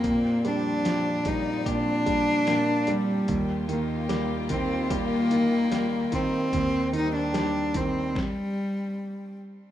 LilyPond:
<<
  \new Staff \with { instrumentName = "Clean electric guitar" } { \time 4/4 \key ees \lydian \tempo 4 = 74 bes,8 d'8 g'8 bes8 g'8 d'8 bes8 d'8 | ees8 ees'8 g'8 bes8 g'8 ees'8 bes8 ees'8 | ees8 ees'8 g'8 c'8 r2 | }
  \new Staff \with { instrumentName = "Cello" } { \time 4/4 \key ees \lydian bes8 d'4 ees'8 d'4. g8~ | g8 bes4 c'8 bes4. c'8~ | c'8 ees'16 d'8. c'8 g4. r8 | }
  \new Staff \with { instrumentName = "String section" } { \time 4/4 \key ees \lydian << { <bes, f>1 | <ees, ees g'>1~ | <ees, ees g'>2 r2 | } \\ { <c' g' d''>1 | <bes f'>1 | <g c'>2 r2 | } >> }
  \new Staff \with { instrumentName = "Grand piano" } { \clef bass \time 4/4 \key ees \lydian bes,8 g8 f8 g8 bes,8 g8 bes,8 g8 | ees,8 ees8 g8 ees8 g8 ees8 g8 ees8 | ees,8 ees8 g8 ees8 r2 | }
  \new DrumStaff \with { instrumentName = "Drums" } \drummode { \time 4/4 <hh bd>8 hh8 <hh sn>8 <hh bd>8 <hh bd>8 <hh bd>8 <hh sn>8 hh8 | <hh bd>8 hh8 <hh sn>8 <hh bd>8 <hh bd>8 hh8 <hh sn>8 <hh bd>8 | <hh bd>8 hh8 <hh sn>8 <hh bd>8 <bd sn>4 r4 | }
>>